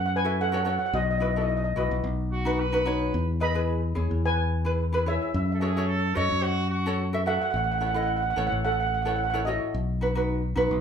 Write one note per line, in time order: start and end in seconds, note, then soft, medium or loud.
0.00 0.77 F#2 medium
0.06 0.10 F#5 medium
0.16 0.39 B4 medium
0.16 0.42 G#5 loud
0.25 0.41 F#4 medium
0.25 0.41 A4 medium
0.25 0.42 E5 medium
0.41 0.47 A4 medium
0.41 0.48 F#5 loud
0.49 0.60 F#4 medium
0.49 0.55 F#5 medium
0.53 0.61 A4 medium
0.53 0.61 C#5 medium
0.53 0.63 F#5 medium
0.64 0.93 F#4 medium
0.64 0.93 A4 medium
0.64 0.94 C#5 medium
0.64 0.68 F#5 medium
0.69 0.77 F#5 medium
0.79 0.85 F#5 medium
0.86 0.92 F#5 medium
0.93 1.72 B1 loud
0.93 1.01 F#4 medium
0.93 1.01 D#5 medium
1.02 1.09 D#5 medium
1.11 1.17 D#5 medium
1.18 1.30 E4 medium
1.18 1.30 F#4 medium
1.18 1.30 B4 medium
1.18 1.23 D#5 medium
1.24 1.31 D#5 medium
1.32 1.61 E4 medium
1.32 1.39 D#5 medium
1.37 1.61 F#4 medium
1.37 1.61 A4 medium
1.41 1.47 D#5 medium
1.49 1.55 D#5 medium
1.57 1.63 D#5 medium
1.64 1.70 D#5 medium
1.76 1.90 B1 medium
1.76 2.04 E4 medium
1.76 2.04 F#4 medium
1.76 2.84 F#4 medium
1.76 2.04 B4 medium
1.76 2.84 D#5 medium
1.91 2.03 B1 medium
2.04 3.10 B1 loud
2.32 2.62 F#4 medium
2.45 2.61 D#4 medium
2.45 2.62 F#4 medium
2.45 2.62 B4 loud
2.60 3.29 B4 loud
2.72 2.81 D#4 medium
2.72 2.81 F#4 medium
2.72 2.81 B4 loud
2.85 3.13 D#4 medium
2.85 3.14 F#4 medium
2.85 3.14 C#5 loud
3.14 3.92 E2 loud
3.40 3.50 E4 medium
3.40 3.50 G#4 medium
3.40 3.50 B4 medium
3.40 4.20 D#5 medium
3.40 4.27 B5 loud
3.54 3.80 E4 medium
3.54 3.80 G#4 medium
3.54 3.80 B4 medium
3.95 4.10 E2 medium
3.95 4.38 E4 medium
3.95 4.38 G#4 medium
3.95 4.38 C#5 medium
4.11 5.17 E2 medium
4.25 5.03 B4 medium
4.25 5.10 G#5 loud
4.65 4.81 E4 medium
4.65 4.81 G#4 medium
4.65 4.82 B4 medium
4.93 5.01 E4 medium
4.93 5.01 G#4 medium
4.93 5.01 B4 medium
5.06 5.34 E4 medium
5.06 5.34 G#4 medium
5.06 5.15 G#4 medium
5.06 5.34 C#5 medium
5.06 5.14 E5 medium
5.15 5.21 E5 medium
5.22 5.28 E5 medium
5.29 5.34 E5 soft
5.34 6.13 F#2 loud
5.34 5.43 E5 medium
5.45 5.51 E5 soft
5.52 5.61 A4 medium
5.52 5.58 E5 medium
5.60 5.70 F#4 medium
5.60 5.89 G#4 medium
5.60 5.70 A4 medium
5.60 5.71 C#5 medium
5.60 5.66 E5 medium
5.68 5.74 E5 medium
5.76 6.01 F#4 medium
5.76 6.01 A4 medium
5.76 6.01 C#5 medium
5.76 5.82 E5 medium
5.88 6.17 A4 loud
6.15 6.30 F#2 loud
6.15 6.58 F#4 medium
6.15 6.58 A4 medium
6.15 6.44 C#5 loud
6.15 6.59 D#5 loud
6.32 7.37 F#2 medium
6.43 6.70 F#4 loud
6.70 7.10 F#4 medium
6.86 7.02 F#4 medium
6.86 7.02 A4 medium
6.86 7.02 C#5 loud
7.13 7.21 F#4 medium
7.13 7.21 A4 medium
7.13 7.22 E5 medium
7.26 7.54 F#4 medium
7.26 7.54 A4 medium
7.26 7.34 A4 medium
7.26 7.54 E5 medium
7.26 7.33 F#5 loud
7.34 7.40 F#5 medium
7.41 7.49 F#5 medium
7.51 8.32 A1 medium
7.51 7.55 F#5 medium
7.56 7.63 F#5 medium
7.64 7.70 F#5 medium
7.72 7.77 F#5 medium
7.78 7.90 E4 medium
7.78 7.90 A4 medium
7.78 7.90 C#5 medium
7.78 7.85 F#5 medium
7.86 7.93 F#5 medium
7.94 8.20 E4 medium
7.94 8.20 A4 medium
7.94 8.20 D#5 medium
7.94 8.01 F#5 medium
8.03 8.06 F#5 medium
8.07 8.15 F#5 medium
8.16 8.21 F#5 medium
8.22 8.29 F#5 medium
8.30 8.37 F#5 medium
8.36 8.50 A1 medium
8.36 8.78 E4 medium
8.36 8.79 A4 medium
8.36 8.79 C#5 medium
8.36 8.46 F#5 medium
8.47 8.54 F#5 medium
8.52 9.58 A1 medium
8.65 8.72 A4 medium
8.65 8.71 F#5 loud
8.72 8.79 F#5 medium
8.80 8.85 F#5 medium
8.87 8.93 F#5 medium
8.94 9.01 F#5 medium
9.02 9.21 E4 medium
9.02 9.22 A4 medium
9.02 9.08 F#5 medium
9.07 9.22 C#5 medium
9.07 9.15 F#5 medium
9.16 9.23 F#5 medium
9.24 9.29 F#5 medium
9.30 9.41 E4 medium
9.30 9.38 F#5 medium
9.34 9.41 A4 medium
9.34 9.42 C#5 medium
9.45 9.74 E4 medium
9.45 10.81 F#4 medium
9.45 9.74 A4 medium
9.45 9.75 C#5 medium
9.45 10.81 D#5 medium
9.75 10.53 B1 loud
10.01 10.10 D#4 medium
10.01 10.10 F#4 medium
10.01 10.11 B4 medium
10.15 10.40 D#4 medium
10.15 10.41 F#4 medium
10.15 10.41 B4 medium
10.56 10.70 B1 medium
10.56 10.81 D#4 medium
10.56 10.81 F#4 medium
10.56 10.81 B4 loud
10.71 10.81 B1 medium